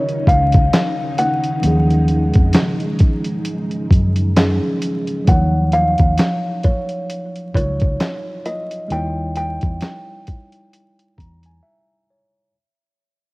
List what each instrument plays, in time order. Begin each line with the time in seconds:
Already playing: string machine C#3 D#3 C#4 D#4, tine electric piano F#3 C#4 F4 A#4, kalimba C#5
0.09 closed hi-hat
0.27 fingered electric bass C#2, kalimba F5, kick, closed hi-hat
0.52 kick, closed hi-hat
0.73 snare, clap, closed hi-hat
1.18 kalimba F#5, closed hi-hat
1.44 closed hi-hat
1.61 fingered electric bass D#2, tine electric piano F3 F#3 C#4, string machine G#3, closed hi-hat
1.67 tine electric piano G#4
1.90 closed hi-hat
2.08 closed hi-hat
2.34 fingered electric bass F2, kick, closed hi-hat
2.53 snare, clap, closed hi-hat
2.80 closed hi-hat
2.99 kick, closed hi-hat
3.24 closed hi-hat
3.45 closed hi-hat
3.71 closed hi-hat
3.91 fingered electric bass F#2, kick, closed hi-hat
4.16 closed hi-hat
4.37 tine electric piano F3 F#3 C#4 G#4, snare, clap, closed hi-hat
4.82 closed hi-hat
5.07 closed hi-hat
5.24 fingered electric bass D#2, tine electric piano F3 F#3 D#4, kick, closed hi-hat
5.28 tine electric piano C#5, kalimba F#5
5.72 kalimba F5, closed hi-hat
5.98 fingered electric bass D#2, kick, closed hi-hat
6.18 snare, clap, closed hi-hat
6.63 kalimba C#5, kick, closed hi-hat
6.89 closed hi-hat
7.10 closed hi-hat
7.36 closed hi-hat
7.54 fingered electric bass C#2, tine electric piano F#3 D#4 F4 C#5, kalimba C#5, kick, closed hi-hat
7.80 kick, closed hi-hat
8.00 snare, clap, closed hi-hat
8.46 kalimba D#5, closed hi-hat
8.71 closed hi-hat
8.88 fingered electric bass D#2, tine electric piano G3 D#4 E4, kalimba G5, closed hi-hat
8.93 tine electric piano C#5
9.36 kalimba G5, closed hi-hat
9.61 fingered electric bass E2, kick, closed hi-hat
9.81 snare, clap, closed hi-hat
10.27 kick, closed hi-hat
10.52 closed hi-hat
10.73 closed hi-hat
10.99 closed hi-hat
11.18 fingered electric bass E2, tine electric piano A#5, kick, closed hi-hat
11.43 tine electric piano G#5, closed hi-hat
11.63 tine electric piano E5
12.10 tine electric piano C#5